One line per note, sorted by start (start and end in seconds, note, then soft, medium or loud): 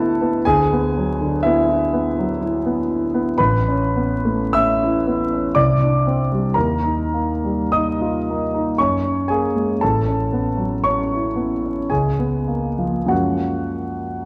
0.00 0.41 D2 medium
0.00 0.47 F#3 soft
0.00 0.47 A3 soft
0.00 0.21 B3 medium
0.00 0.47 E4 soft
0.00 0.40 A4 medium
0.00 0.47 B4 medium
0.00 0.44 A5 medium
0.00 0.47 B5 medium
0.21 0.45 B3 soft
0.45 3.35 D2 medium
0.45 1.39 G#4 medium
0.45 1.43 G#5 medium
0.72 1.10 B3 soft
0.97 1.34 F#3 soft
1.21 1.58 D3 soft
1.43 1.82 B3 soft
1.43 1.68 E4 medium
1.43 2.39 E5 medium
1.69 2.06 E4 soft
1.93 2.30 B3 soft
2.19 2.55 F#3 soft
2.41 2.79 E4 soft
2.66 3.03 B3 soft
2.91 3.29 E4 soft
3.14 3.39 B3 soft
3.38 5.52 A1 medium
3.38 4.48 B4 medium
3.38 4.51 B5 medium
3.68 4.13 C#4 soft
3.96 4.41 B3 soft
4.25 4.69 A3 soft
4.53 4.96 C#4 soft
4.53 5.52 E5 medium
4.53 5.56 E6 medium
4.83 5.22 E4 soft
5.07 5.46 B3 soft
5.33 5.56 C#4 soft
5.55 6.52 C2 soft
5.55 6.51 D5 medium
5.55 6.55 D6 medium
5.83 6.21 D4 soft
6.07 6.46 C4 soft
6.32 6.56 G3 soft
6.54 8.73 D#2 soft
6.54 7.67 A#4 medium
6.54 7.70 A#5 medium
6.83 7.30 D#4 soft
7.14 7.60 A#3 soft
7.44 7.88 G3 soft
7.72 8.16 D#4 soft
7.72 8.73 D#5 medium
7.72 8.77 D#6 medium
8.01 8.41 F4 soft
8.30 8.69 A#3 soft
8.54 8.78 D#4 soft
8.78 9.80 F#2 soft
8.78 9.27 C#5 medium
8.78 9.30 C#6 medium
9.04 9.45 C#4 soft
9.28 9.72 A#3 soft
9.28 9.78 G#4 soft
9.28 9.81 G#5 medium
9.56 9.81 G#3 soft
9.81 11.87 A1 soft
9.81 10.80 A4 soft
9.81 10.83 A5 medium
10.08 10.48 C#4 soft
10.32 10.73 B3 soft
10.57 10.98 F#3 soft
10.84 11.25 C#4 soft
10.84 11.86 C#5 medium
10.84 11.89 C#6 medium
11.13 11.53 E4 soft
11.36 11.79 B3 soft
11.65 11.91 C#4 soft
11.90 13.08 C#2 soft
11.90 13.07 G#4 soft
11.90 13.11 G#5 medium
12.19 12.67 B3 soft
12.48 12.98 A#3 soft
12.79 13.05 F3 soft
13.05 14.25 F#2 soft
13.05 14.25 F3 soft
13.05 14.25 G#3 soft
13.05 14.25 A#3 soft
13.05 14.25 F#4 soft
13.05 14.25 F#5 medium
13.10 14.25 C#4 soft